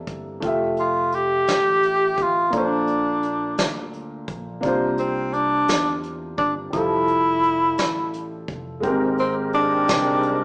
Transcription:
0.00 0.44 C3 soft
0.00 0.37 A#3 medium
0.00 0.38 E4 soft
0.00 0.39 A4 soft
0.00 0.43 D5 medium
0.07 0.42 G1 medium
0.07 kick medium
0.07 closed hi-hat soft
0.40 1.44 F1 medium
0.40 2.48 A3 soft
0.40 2.49 F4 soft
0.40 kick medium
0.40 closed hi-hat medium
0.44 2.50 G4 soft
0.44 2.51 E5 medium
0.77 1.16 F4 medium
0.77 closed hi-hat soft
1.12 2.23 G4 medium
1.12 closed hi-hat soft
1.48 2.14 A1 medium
1.48 snare medium
1.48 closed hi-hat medium
1.83 closed hi-hat soft
2.18 2.50 A1 medium
2.18 kick medium
2.18 closed hi-hat soft
2.22 2.55 F4 medium
2.50 3.54 A#1 medium
2.50 3.55 A#2 soft
2.50 4.58 A#3 soft
2.50 4.59 D4 soft
2.50 4.60 A4 soft
2.50 kick medium
2.50 closed hi-hat medium
2.57 3.91 D4 medium
2.57 4.61 C5 medium
2.88 closed hi-hat soft
3.23 closed hi-hat soft
3.58 4.24 D2 medium
3.58 snare medium
3.58 closed hi-hat medium
3.93 closed hi-hat soft
4.28 4.60 A#1 medium
4.28 kick medium
4.28 closed hi-hat soft
4.61 5.64 C2 medium
4.61 5.65 C3 medium
4.61 6.68 A#3 medium
4.61 6.69 D4 soft
4.61 kick medium
4.61 closed hi-hat medium
4.65 6.70 F4 soft
4.65 6.71 C5 medium
4.98 5.35 C4 medium
4.98 closed hi-hat soft
5.33 6.03 D4 medium
5.33 closed hi-hat soft
5.68 6.34 E2 medium
5.68 snare medium
5.68 closed hi-hat medium
6.03 closed hi-hat soft
6.38 6.70 G1 medium
6.38 6.54 D4 medium
6.38 kick medium
6.38 closed hi-hat soft
6.70 7.74 F1 medium
6.70 8.78 G3 soft
6.70 8.79 E4 soft
6.70 8.44 E4 medium
6.70 kick medium
6.70 closed hi-hat medium
6.74 8.80 F3 soft
6.74 8.81 A4 medium
7.08 closed hi-hat soft
7.43 closed hi-hat soft
7.78 8.44 A1 medium
7.78 snare medium
7.78 closed hi-hat medium
8.14 closed hi-hat soft
8.48 8.83 F1 medium
8.48 kick medium
8.48 closed hi-hat soft
8.80 9.84 G#1 medium
8.80 9.84 G#2 medium
8.80 10.44 G#3 medium
8.80 8.89 A#3 soft
8.80 10.44 C4 soft
8.80 10.44 G4 medium
8.80 10.44 A#4 medium
8.80 kick medium
8.80 closed hi-hat medium
8.86 10.44 C4 medium
8.86 10.44 A#4 medium
9.18 9.35 C4 medium
9.18 closed hi-hat soft
9.53 10.44 D4 medium
9.53 closed hi-hat soft
9.88 10.44 C2 medium
9.88 snare medium
9.88 closed hi-hat medium
10.23 closed hi-hat soft

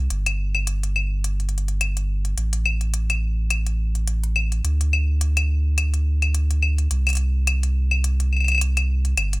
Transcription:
0.10 2.35 G1 medium
0.10 closed hi-hat soft
0.26 closed hi-hat soft
0.26 claves medium
0.55 claves medium
0.67 closed hi-hat medium
0.83 closed hi-hat soft
0.96 claves medium
1.24 closed hi-hat soft
1.40 closed hi-hat soft
1.49 closed hi-hat soft
1.58 closed hi-hat soft
1.68 closed hi-hat soft
1.81 closed hi-hat medium
1.81 claves medium
1.97 closed hi-hat soft
2.25 closed hi-hat soft
2.37 4.61 A1 medium
2.37 closed hi-hat soft
2.53 closed hi-hat soft
2.66 claves medium
2.81 closed hi-hat soft
2.94 closed hi-hat medium
3.10 closed hi-hat soft
3.10 claves medium
3.50 closed hi-hat soft
3.50 claves medium
3.67 closed hi-hat soft
3.95 closed hi-hat soft
4.07 closed hi-hat medium
4.24 closed hi-hat soft
4.36 claves medium
4.52 closed hi-hat soft
4.64 6.88 D2 medium
4.64 closed hi-hat medium
4.81 closed hi-hat soft
4.93 claves medium
5.21 closed hi-hat medium
5.37 closed hi-hat soft
5.37 claves medium
5.78 closed hi-hat medium
5.78 claves medium
5.94 closed hi-hat soft
6.22 closed hi-hat soft
6.22 claves medium
6.35 closed hi-hat medium
6.51 closed hi-hat soft
6.62 claves medium
6.78 closed hi-hat soft
6.91 9.14 C2 medium
6.91 closed hi-hat medium
7.07 closed hi-hat soft
7.07 claves medium
7.09 closed hi-hat soft
7.13 closed hi-hat soft
7.15 closed hi-hat soft
7.17 closed hi-hat soft
7.47 closed hi-hat medium
7.47 claves medium
7.63 closed hi-hat soft
7.91 claves medium
8.04 closed hi-hat medium
8.20 closed hi-hat soft
8.33 claves soft
8.36 claves soft
8.40 claves soft
8.44 closed hi-hat soft
8.44 claves soft
8.48 claves soft
8.52 claves soft
8.55 claves medium
8.58 closed hi-hat medium
8.58 claves medium
8.77 closed hi-hat soft
8.77 claves medium
9.05 closed hi-hat soft
9.17 9.40 G1 medium
9.17 closed hi-hat medium
9.17 claves medium
9.33 closed hi-hat soft

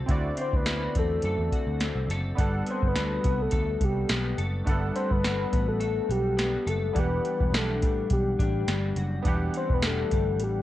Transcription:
0.00 0.36 C4 medium
0.00 0.66 F#4 medium
0.00 1.24 A4 medium
0.06 0.32 D2 loud
0.06 3.60 D3 medium
0.06 2.33 C4 medium
0.06 2.33 E4 medium
0.06 2.34 F#4 medium
0.06 kick loud
0.06 closed hi-hat medium
0.11 2.35 D5 medium
0.37 0.95 C4 soft
0.37 0.57 C5 loud
0.37 closed hi-hat medium
0.53 0.86 D2 medium
0.53 0.96 B4 medium
0.53 kick medium
0.66 0.83 E4 medium
0.66 snare loud
0.66 closed hi-hat medium
0.83 1.51 F#4 soft
0.95 1.18 E2 medium
0.95 1.80 C4 medium
0.95 2.07 A4 loud
0.95 kick medium
0.95 closed hi-hat medium
1.22 1.36 F#2 medium
1.22 2.10 A4 medium
1.22 closed hi-hat medium
1.38 1.49 E2 medium
1.52 2.95 F#4 medium
1.52 kick medium
1.52 closed hi-hat medium
1.66 1.90 D2 medium
1.80 2.45 C4 medium
1.80 snare loud
1.80 closed hi-hat medium
1.95 2.06 C2 medium
2.08 2.31 F#1 medium
2.08 2.70 A4 medium
2.08 snare soft
2.08 closed hi-hat medium
2.35 2.61 G1 loud
2.35 4.66 G3 medium
2.35 4.62 B3 medium
2.35 4.62 D4 medium
2.35 4.63 F#5 medium
2.35 kick loud
2.35 closed hi-hat medium
2.40 4.64 A4 medium
2.66 3.23 B3 medium
2.66 2.89 C5 loud
2.66 closed hi-hat medium
2.82 2.93 G1 medium
2.82 kick medium
2.88 3.43 B4 loud
2.94 3.18 D2 medium
2.94 4.70 F#4 medium
2.94 snare loud
2.94 closed hi-hat medium
3.23 3.47 C2 medium
3.23 4.09 B3 soft
3.23 kick medium
3.23 closed hi-hat medium
3.42 3.86 A4 loud
3.51 3.75 D2 medium
3.51 4.37 A4 medium
3.51 kick medium
3.51 closed hi-hat medium
3.81 4.04 C2 medium
3.81 4.40 G4 medium
3.81 kick medium
3.81 closed hi-hat medium
4.09 4.33 B1 medium
4.09 4.95 B3 medium
4.09 snare loud
4.09 closed hi-hat medium
4.38 4.61 F#1 medium
4.38 5.79 A4 medium
4.38 closed hi-hat medium
4.64 4.90 G1 loud
4.64 7.25 G3 medium
4.64 4.73 A3 medium
4.64 6.92 D4 medium
4.64 6.93 F#5 medium
4.64 kick loud
4.64 closed hi-hat medium
4.69 6.92 B3 medium
4.69 6.94 A4 medium
4.95 5.52 B3 medium
4.95 5.13 C5 loud
4.95 closed hi-hat medium
5.11 5.45 G1 medium
5.11 5.68 B4 loud
5.11 kick medium
5.24 6.98 F#4 medium
5.24 snare loud
5.24 closed hi-hat medium
5.53 5.99 A1 medium
5.53 6.37 B3 medium
5.53 kick medium
5.53 closed hi-hat medium
5.68 6.13 A4 medium
5.80 6.66 A4 medium
5.80 closed hi-hat medium
6.10 6.56 B1 medium
6.10 6.68 G4 loud
6.10 closed hi-hat medium
6.37 7.53 B3 medium
6.37 snare loud
6.37 closed hi-hat medium
6.67 6.90 F#1 medium
6.67 7.02 A4 medium
6.67 7.01 A4 medium
6.67 closed hi-hat medium
6.93 7.19 E1 loud
6.93 9.26 E3 medium
6.93 9.20 B3 medium
6.93 9.21 D4 medium
6.93 9.22 F#5 medium
6.93 kick medium
6.93 closed hi-hat medium
6.98 9.23 G4 medium
6.98 7.55 B4 loud
7.25 7.83 G3 soft
7.25 closed hi-hat medium
7.40 7.51 E1 medium
7.40 kick medium
7.52 7.82 B1 medium
7.52 8.38 D4 medium
7.52 snare loud
7.52 closed hi-hat medium
7.57 8.09 A4 medium
7.82 8.05 A1 medium
7.82 8.68 G3 medium
7.82 kick medium
7.82 closed hi-hat medium
8.10 8.34 B1 medium
8.10 8.39 G4 medium
8.10 kick medium
8.10 closed hi-hat medium
8.39 8.63 A1 medium
8.39 9.82 D4 medium
8.39 8.94 G4 medium
8.39 kick medium
8.39 closed hi-hat medium
8.68 8.91 G1 medium
8.68 9.55 G3 medium
8.68 snare loud
8.68 closed hi-hat medium
8.96 9.19 F#1 medium
8.96 10.40 F#4 medium
8.96 closed hi-hat medium
9.22 9.48 E1 loud
9.22 10.62 E3 medium
9.22 10.62 B3 medium
9.22 10.62 D4 medium
9.22 10.62 F#5 medium
9.22 kick loud
9.22 closed hi-hat medium
9.28 10.62 G4 medium
9.54 10.12 G3 medium
9.54 9.75 C5 loud
9.54 closed hi-hat medium
9.70 10.03 E1 medium
9.70 9.85 B4 medium
9.70 kick medium
9.83 10.62 D4 medium
9.83 10.45 A4 loud
9.83 snare loud
9.83 closed hi-hat medium
10.12 10.40 G1 medium
10.12 10.62 G3 medium
10.12 kick medium
10.12 closed hi-hat medium
10.40 10.62 A1 medium
10.40 10.62 G4 medium
10.40 closed hi-hat medium

